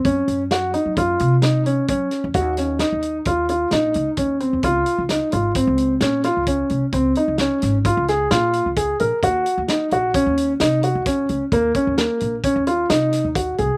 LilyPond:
<<
  \new Staff \with { instrumentName = "Grand piano" } { \time 5/4 \key des \major \tempo 4 = 131 des'4 ges'8 ees'8 f'4 ees'8 des'8 des'4 | ges'8 des'8 ees'4 f'8 f'8 ees'4 des'8 c'8 | f'4 ees'8 f'8 c'4 des'8 f'8 des'4 | c'8 ees'8 des'4 f'8 aes'8 f'4 aes'8 bes'8 |
ges'4 ees'8 ges'8 des'4 ees'8 ges'8 des'4 | bes8 des'8 bes4 des'8 f'8 ees'4 ges'8 aes'8 | }
  \new Staff \with { instrumentName = "Upright bass" } { \clef bass \time 5/4 \key des \major ges,8 ges,4~ ges,16 ges16 ges,8 c4. ges8 r16 fes,16 | ees,4~ ees,16 ees,8. ees,4 bes,,8 des,16 r16 ees,8. ees,16 | des,8 r16 des,8 r16 aes,,8. des,8. bes,8. des,8. c,16 r16 | des,8 r16 des,8 r16 aes,,8. des,8. bes,8. des,8. bes,,16 r16 |
ees,8 r16 ees,8 r16 bes,,8. ees,8. c8. ees,8. des,16 r16 | ees,8 r16 ees,8 r16 bes,,8. ees,8. c8. ees,8. c,16 r16 | }
  \new DrumStaff \with { instrumentName = "Drums" } \drummode { \time 5/4 <hh bd>8 hh8 <hh sn>8 hh8 <hh bd>8 hh8 <hh sn>8 hh8 <hh bd>8 <hh sn>8 | <hh bd>8 <hh sn>8 <hh sn>8 hh8 <hh bd>8 hh8 <hh sn>8 hh8 <hh bd>8 hh8 | <hh bd>8 hh8 <hh sn>8 hh8 <hh bd>8 hh8 <hh sn>8 <hh sn>8 <hh bd>8 hh8 | <hh bd>8 hh8 <hh sn>8 <hh sn>8 <hh bd>8 <hh sn>8 <hh sn>8 hh8 <hh bd>8 hh8 |
<hh bd>8 hh8 <hh sn>8 hh8 <hh bd>8 hh8 <hh sn>8 hh8 <hh bd sn>8 hh8 | <hh bd>8 <hh bd>8 <hh sn>8 hh8 <hh bd>8 hh8 <hh sn>8 <hh sn>8 <hh bd>8 hh8 | }
>>